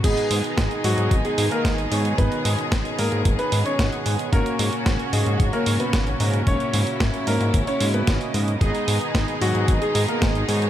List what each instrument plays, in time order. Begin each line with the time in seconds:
0.04 analog synth bass G#1, string section B2 D#3 G#3 D#4 G#4, grand piano G#3 G#4, analog polysynth B3 D#4 G#4 D#5, kick, closed hi-hat, crash
0.17 closed hi-hat
0.31 analog synth bass G#2, open hi-hat
0.44 closed hi-hat
0.58 analog synth bass G#1, kick, snare, closed hi-hat
0.71 closed hi-hat
0.84 analog synth bass G#2, grand piano F#3 F#4, open hi-hat
0.98 analog synth bass G#2, closed hi-hat
1.11 analog synth bass G#1, kick, closed hi-hat
1.25 grand piano G#3 G#4, closed hi-hat
1.38 analog synth bass G#2, open hi-hat
1.51 grand piano A#3 A#4, closed hi-hat
1.65 analog synth bass G#1, kick, snare, closed hi-hat
1.78 closed hi-hat
1.91 analog synth bass G#2, analog polysynth B3 D#4 G#4 C#5, open hi-hat
2.05 closed hi-hat
2.18 analog synth bass G#1, analog polysynth B3 D#4 G#4 D#5, grand piano B3 B4, string section C#4, kick, closed hi-hat
2.32 closed hi-hat
2.45 analog synth bass G#2, open hi-hat
2.59 closed hi-hat
2.72 analog synth bass G#1, kick, snare, closed hi-hat
2.85 closed hi-hat
2.99 analog synth bass G#2, grand piano A#3 A#4, open hi-hat
3.12 analog synth bass G#2, closed hi-hat
3.25 analog synth bass G#1, kick, closed hi-hat
3.39 grand piano B3 B4, closed hi-hat
3.52 analog synth bass G#2, open hi-hat
3.66 grand piano C#4 C#5, closed hi-hat
3.79 analog synth bass G#1, analog polysynth B3 D#4 G#4 F#5, kick, snare, closed hi-hat
3.92 closed hi-hat
4.06 analog synth bass G#2, open hi-hat
4.19 closed hi-hat
4.32 analog synth bass G#1, string section A#2 C#3 F#3 F#4, analog polysynth A#3 C#4 F#4 C#5, grand piano A#3 A#4, kick, closed hi-hat
4.46 closed hi-hat
4.59 analog synth bass G#2, open hi-hat
4.73 closed hi-hat
4.86 analog synth bass G#1, kick, snare, closed hi-hat
4.99 closed hi-hat
5.13 analog synth bass G#2, grand piano G#3 G#4, open hi-hat
5.26 analog synth bass G#2, closed hi-hat
5.40 analog synth bass G#1, kick, closed hi-hat
5.53 grand piano A#3 A#4, closed hi-hat
5.66 analog synth bass G#2, open hi-hat
5.80 grand piano B3 B4, closed hi-hat
5.93 analog synth bass G#1, kick, snare, closed hi-hat
6.07 closed hi-hat
6.20 analog synth bass G#2, analog polysynth A#3 C#4 F#4 A#4, open hi-hat
6.33 closed hi-hat
6.47 analog synth bass G#1, analog polysynth A#3 C#4 F#4 C#5, grand piano C#4 C#5, string section E4, kick, closed hi-hat
6.60 closed hi-hat
6.74 analog synth bass G#2, open hi-hat
6.87 closed hi-hat
7.00 analog synth bass G#1, kick, snare, closed hi-hat
7.14 closed hi-hat
7.27 analog synth bass G#2, grand piano A#3 A#4, open hi-hat
7.40 analog synth bass G#2, closed hi-hat
7.54 analog synth bass G#1, kick, closed hi-hat
7.67 grand piano C#4 C#5, closed hi-hat
7.80 analog synth bass G#2, open hi-hat
7.94 grand piano B3 B4, closed hi-hat
8.07 analog synth bass G#1, analog polysynth A#3 C#4 F#4 D#5, kick, snare, closed hi-hat
8.21 closed hi-hat
8.34 analog synth bass G#2, open hi-hat
8.48 closed hi-hat
8.61 analog synth bass G#1, string section B2 D#3 G#3 D#4 G#4, grand piano G#3 G#4, analog polysynth B3 D#4 G#4 D#5, kick, closed hi-hat
8.75 closed hi-hat
8.88 analog synth bass G#2, open hi-hat
9.01 closed hi-hat
9.15 analog synth bass G#1, kick, snare, closed hi-hat
9.28 closed hi-hat
9.41 analog synth bass G#2, grand piano F#3 F#4, open hi-hat
9.55 analog synth bass G#2, closed hi-hat
9.68 analog synth bass G#1, kick, closed hi-hat
9.81 grand piano G#3 G#4, closed hi-hat
9.95 analog synth bass G#2, open hi-hat
10.08 grand piano A#3 A#4, closed hi-hat
10.22 analog synth bass G#1, kick, snare, closed hi-hat
10.35 closed hi-hat
10.48 analog synth bass G#2, analog polysynth B3 D#4 G#4 C#5, open hi-hat
10.62 closed hi-hat